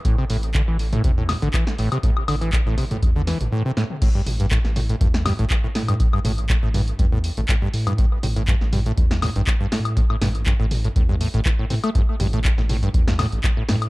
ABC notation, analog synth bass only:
X:1
M:4/4
L:1/16
Q:"Swing 16ths" 1/4=121
K:Am
V:1 name="Analog synth bass" clef=bass
z2 A,,,2 z A,,,2 z E,,2 z A,,, z2 A,,, z | z2 A,,,2 z A,,,2 z E,,2 z A,,, z4 | z2 A,,,2 z A,,,2 z E,,2 z A,,, z2 A,,2 | z2 A,,,2 z A,,,2 z E,,2 z A,,, z2 A,,2 |
z2 A,,,2 z A,,,2 z E,,2 z A,,, z2 A,,2 | z2 A,,,2 z A,,,2 z E,,2 z A,,, z2 A,, z | z2 A,,,2 z A,,,2 z E,,2 z A,,, z2 A,,2 |]